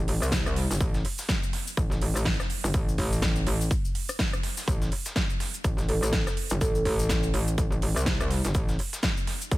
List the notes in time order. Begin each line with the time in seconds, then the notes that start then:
Already playing: A1
0.08 closed hi-hat, open hi-hat
0.22 C2, cross-stick, cabasa
0.32 kick, snare, closed hi-hat, cabasa
0.46 cross-stick, closed hi-hat, cabasa
0.56 snare, closed hi-hat, open hi-hat
0.70 G1, snare, cabasa
0.81 A1, kick, closed hi-hat, cabasa
0.94 snare, cabasa
1.05 closed hi-hat, open hi-hat
1.18 snare, cabasa
1.29 kick, snare, closed hi-hat, cabasa
1.43 cabasa
1.53 snare, closed hi-hat, open hi-hat
1.67 cabasa
1.77 A1, kick, closed hi-hat, cabasa
1.91 snare, cabasa
2.01 closed hi-hat, open hi-hat
2.16 A1, cross-stick, cabasa
2.25 kick, snare, closed hi-hat, cabasa
2.40 cross-stick, snare, cabasa
2.50 closed hi-hat, open hi-hat
2.64 G1, cabasa
2.74 A1, kick, closed hi-hat, cabasa
2.89 cabasa
2.98 A1, kick, snare, closed hi-hat, open hi-hat
3.12 cabasa
3.22 kick, snare, closed hi-hat, cabasa
3.36 cabasa
3.47 A1, closed hi-hat, open hi-hat
3.61 cabasa
3.71 kick, closed hi-hat, cabasa
3.85 cabasa
3.95 closed hi-hat, open hi-hat
4.09 cross-stick, cabasa
4.19 kick, snare, closed hi-hat, cabasa
4.33 cross-stick, closed hi-hat, cabasa
4.43 snare, closed hi-hat, open hi-hat
4.57 snare, cabasa
4.68 A1, kick, closed hi-hat, cabasa
4.82 snare, cabasa
4.92 closed hi-hat, open hi-hat
5.05 snare, closed hi-hat, cabasa
5.16 kick, snare, closed hi-hat, cabasa
5.30 cabasa
5.40 snare, closed hi-hat, open hi-hat
5.54 closed hi-hat, cabasa
5.64 A1, kick, closed hi-hat, cabasa
5.78 snare, cabasa
5.89 A4, closed hi-hat, open hi-hat
6.03 A1, cross-stick, closed hi-hat, cabasa
6.13 kick, snare, closed hi-hat, cabasa
6.27 cross-stick, snare, cabasa
6.37 closed hi-hat, open hi-hat
6.50 G1, closed hi-hat, cabasa
6.61 A1 A4, kick, closed hi-hat, cabasa
6.75 A4, cabasa
6.85 A1 A4, kick, snare, closed hi-hat, open hi-hat
6.99 A4, closed hi-hat, cabasa
7.09 kick, snare, closed hi-hat, cabasa
7.23 cabasa
7.34 A1, closed hi-hat, open hi-hat
7.48 closed hi-hat, cabasa
7.58 A1, kick, closed hi-hat, cabasa
7.72 cabasa
7.82 closed hi-hat, open hi-hat
7.96 C2, cross-stick, closed hi-hat, cabasa
8.06 kick, snare, closed hi-hat, cabasa
8.20 cross-stick, closed hi-hat, cabasa
8.30 snare, closed hi-hat, open hi-hat
8.44 G1, snare, closed hi-hat, cabasa
8.54 A1, kick, closed hi-hat, cabasa
8.68 snare, cabasa
8.79 closed hi-hat, open hi-hat
8.93 snare, closed hi-hat, cabasa
9.03 kick, snare, closed hi-hat, cabasa
9.17 cabasa
9.27 snare, closed hi-hat, open hi-hat
9.41 closed hi-hat, cabasa
9.51 A1, kick, closed hi-hat, cabasa